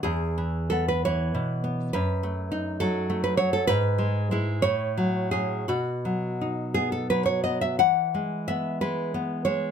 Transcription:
\new Staff \with { instrumentName = "Nylon-string guitar" } { \time 6/8 \key e \major \tempo 4. = 61 << { gis'4 a'16 b'16 cis''4. | b'4. a'8. b'16 cis''16 a'16 | b'4. cis''4 gis'8 | fis'4. gis'16 a'16 b'16 cis''16 dis''16 e''16 |
fis''4 e''8 b'4 cis''8 | } \\ { e,8 e8 b8 e8 b,8 b8 | fis,8 a8 dis'8 fis8 a8 fis8 | gis,8 gis8 <gis e'>8 a,8 fis8 <fis cis'>8 | b,8 fis8 dis'8 b8 fis8 b8 |
e8 gis8 b8 gis8 b8 gis8 | } >> }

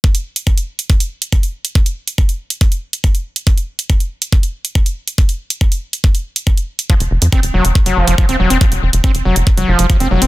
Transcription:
<<
  \new Staff \with { instrumentName = "Acid bass" } { \clef bass \time 4/4 \tempo 4 = 140 r1 | r1 | r1 | r1 |
f16 r8. c'16 r16 ges16 r8 ges16 f16 f16 f16 c'16 ges16 c'16 | f16 r8. c'16 r16 ges16 r8 ges16 f16 f16 f16 c'16 ges16 c'16 | }
  \new Staff \with { instrumentName = "Analog synth bass" } { \clef bass \time 4/4 r1 | r1 | r1 | r1 |
r16 f,,16 f,,16 f,16 r16 f,,16 f,,16 f,,16 r16 ges,,16 ges,,16 ges,,16 r16 f,,16 f,,16 f,,16 | r16 f,,16 f,,16 f,,16 r16 f,,16 f,,16 f,,16 r16 f,,16 f,,16 f,,16 r16 f,,16 f,,16 f,,16 | }
  \new DrumStaff \with { instrumentName = "Drums" } \drummode { \time 4/4 <hh bd>16 hh8 hh16 <hh bd>16 hh8 hh16 <hh bd>16 hh8 hh16 <hh bd>16 hh8 hh16 | <hh bd>16 hh8 hh16 <hh bd>16 hh8 hh16 <hh bd>16 hh8 hh16 <hh bd>16 hh8 hh16 | <hh bd>16 hh8 hh16 <hh bd>16 hh8 hh16 <hh bd>16 hh8 hh16 <hh bd>16 hh8 hh16 | <hh bd>16 hh8 hh16 <hh bd>16 hh8 hh16 <hh bd>16 hh8 hh16 <hh bd>16 hh8 hh16 |
<hh bd>16 hh8 hh16 <hh bd>16 hh8 hh16 <hh bd>16 hh8 hh16 <hh bd>16 hh8 hh16 | <hh bd>16 hh8 hh16 <hh bd>16 hh8 hh16 <hh bd>16 hh8 hh16 <hh bd>16 hh8 hh16 | }
>>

